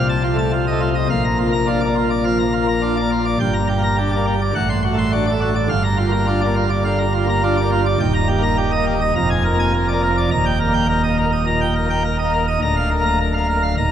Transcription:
pipe organ
Already playing: C2 C3
0.09 A5
0.24 F4
0.34 A3
0.39 A5
0.53 F4
0.67 D#5
0.72 A3
0.81 F4
0.95 D#5
1.10 A#1 A#2 F5
1.24 A#5
1.39 F4
1.48 A#3
1.53 A#5
1.67 D4 F4
1.81 D5
1.86 A#3
1.96 F4
2.10 D5
2.25 F3 F5
2.39 A#5
2.53 F4
2.63 A#3
2.68 A#5
2.82 D4 F4
2.97 D5
3.02 A#3
3.12 F4
3.25 D5
3.40 G1 G2 G5
3.54 A#5
3.69 G4
3.78 A#3
3.83 A#5
3.98 D4 G4
4.12 D5
4.17 A#3
4.27 G4
4.41 D5
4.55 A1 A2 F#5
4.69 C6
4.84 F#4
4.94 A3
4.98 C6
5.12 D4 F#4
5.27 D5
5.32 A3
5.41 F#4
5.55 D5
5.69 G1 G2 F5
5.84 A#5
5.98 F4
6.08 A#3
6.12 A#5
6.27 D4 F4
6.41 D5
6.46 A#3
6.56 F4
6.70 D5
6.85 D3 F5
6.99 A#5
7.14 F4
7.24 A#3
7.29 A#5
7.43 D4 F4
7.57 D5
7.62 A#3
7.72 F4
7.86 D5
8.00 D#1 D#2 G5
8.15 A#5
8.29 G4
8.38 A#3
8.43 A#5
8.58 G4
8.72 D#5
8.77 A#3
8.87 G4
9.01 D#5
9.16 F1 F2 A#5
9.30 G#5
9.45 A#4
9.54 A#3
9.59 G#5
9.74 A#4
9.88 D5
9.93 A#3
10.03 A#4
10.18 D5
10.31 D#1 D#2 A#5
10.46 G5
10.60 A#4
10.69 A#3
10.74 G5
10.89 A#4
11.04 D#5
11.09 A#3
11.18 A#4
11.32 D#5
11.47 A#2 A#5
11.61 G5
11.76 A#4
11.86 A#3
11.90 G5
12.04 A#4
12.19 D#5
12.24 A#3
12.33 A#4
12.48 D#5
12.62 D1 D2 A#5
12.77 F5
12.91 A#4
13.01 A#3
13.05 A#5
13.20 A#4
13.34 F5
13.39 A#3
13.49 A#4
13.63 F5
13.77 D#1 D#2 A#5

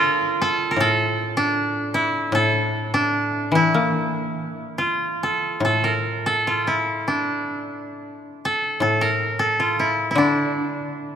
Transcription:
koto
Already playing: D3 D4 F4 A4 A#4 D5 F5
0.42 A4
0.71 A#4
0.76 A2
0.80 A4
1.37 D4
1.94 E4
2.32 A2 A4
2.94 D4
3.52 E3 E4
3.74 A#3
4.78 F4
5.23 A4
5.60 A2
5.65 A4
5.84 A#4
6.26 A4
6.47 F4
6.67 E4
7.08 D4
8.45 A4
8.80 A2 A4
9.01 A#4
9.39 A4
9.60 F4
9.79 E4
10.11 E4
10.15 D3 D4

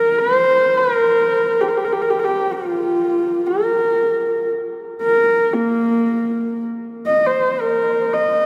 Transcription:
horsehead fiddle
Already playing: A#4
0.18 C5
0.78 A#4
1.61 G4
1.68 A#4
1.77 G4
1.84 A#4
1.92 G4
2.02 A#4
2.10 G4
2.19 A#4
2.25 G4
2.52 F4
3.46 A#4
5.01 A#4
5.53 A#3
7.06 D#5
7.26 C5
7.60 A#4
8.13 D#5

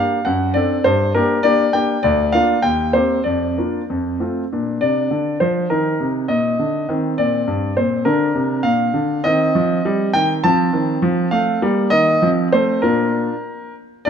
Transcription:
grand piano
Already playing: A#3 D4 G4 F5
0.25 F#2 F#5
0.54 C4 D4 A4 D5
0.84 G2 C5
1.15 A#3 D4 G4 A#4
1.43 A#3 D4 G4 D5
1.73 A#3 D4 G4 G5
2.03 D2 D5
2.32 A#3 D4 F4 F5
2.62 D#2 G5
2.93 A#3 C4 G4 C5
3.24 F2 D5
3.58 A#3 D4 F4
3.90 F2
4.20 A3 C4 F4
4.52 A#2 D4
4.81 C3 D5
5.11 D3
5.40 F3 C5
5.70 D#3 D#4 A#4
6.00 C3
6.28 A#2 D#5
6.59 D3
6.89 D#3 C4
7.18 A#2 D5
7.47 G2
7.77 A#2 C5
8.05 D3 D4 A#4
8.35 C3
8.63 A#2 F5
8.94 D3
9.24 D#3 C4 D#5
9.55 F3
9.85 G3
10.13 D#3 G5
10.44 F3 C4 A5
10.73 D#3
11.02 F3
11.31 A3 F5
11.62 G3 A#3
11.90 D#3 D#5
12.22 F3 C4
12.53 A3 C5
12.82 A#2 D4 F4 A#4
14.05 D4 G4 D5

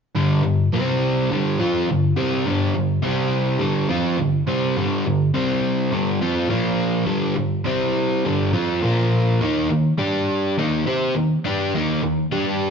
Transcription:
overdriven electric guitar
0.16 G2 D3 G3
0.43 G2 D3
0.73 C3 G3 C4
1.30 G2 D3 G3
1.59 F3 C4 F4
1.90 G2 D3
2.17 C3 G3 C4
2.46 G2 D3 G3
2.75 G2 D3
3.02 C3 G3 C4
3.60 G2 D3 G3
3.89 F3 C4 F4
4.18 G2 D3
4.47 C3 G3 C4
4.77 G2 D3 G3
5.06 G2 D3
5.34 C3 G3 C4
5.92 G2 D3 G3
6.22 F3 C4 F4
6.49 A#2 F3 A#3
7.06 G2 D3 G3
7.35 G2 D3
7.65 C3 G3 C4
8.25 G2 D3 G3
8.53 F3 C4 F4
8.82 A#2 F3 A#3
9.41 D#3 A#3 D#4
9.69 D#3 A#3
9.98 G3 D4 G4
10.58 D#3 A#3 D#4
10.86 C4 G4 C5
11.15 D#3 A#3
11.45 G3 D4 G4
11.74 D#3 A#3 D#4
12.03 D#3 A#3
12.32 G3 D4 G4

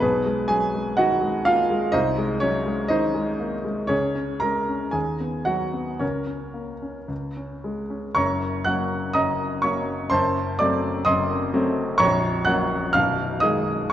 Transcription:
grand piano
0.00 B1 B3 G#4 B4
0.26 G#3
0.48 F#3 G#4 G#5
0.74 G#3
0.97 D#3 F#4 D#5 F#5
1.21 G#3
1.45 A#3 F4 F5
1.70 G#3
1.92 C2 D#4 C5 D#5
2.18 G#3
2.40 F#3 C#4 C#5
2.66 G#3
2.88 D#3 D#4 C5 D#5
3.14 G#3
3.39 A#3
3.64 G#3
3.87 C#2 C#4 G#4 C#5
4.15 C#4
4.40 G#3 A#4 A#5
4.69 C#4
4.91 D#2 G#4 G#5
5.20 B3
5.45 F#3 F#4 F#5
5.73 B3
5.99 C#2 C#4 A#4 C#5
6.27 C#4
6.54 A#3
6.82 C#4
7.08 C#2
7.37 C#4
7.64 G#3
7.90 C#4
8.15 F#1 F#2 C#5 A#5 C#6
8.64 F#3 A#3 C#4 F#5 F#6
9.13 F#1 F#2 D#5 A#5 D#6
9.62 F#3 A#3 C#4 C#5 C#6
10.10 F#1 F#2 C5 A5 C6
10.59 F#3 A3 C4 D5 D6
11.05 F#1 F#2 D#5 C6 D#6
11.53 F#3 A3 C4
11.98 A#0 A#1 C#5 A#5 C#6
12.45 F#3 A#3 C#4 F#5 F#6
12.93 B0 B1 F5 F6
13.40 D#3 G#3 G#4 D#5 D#6

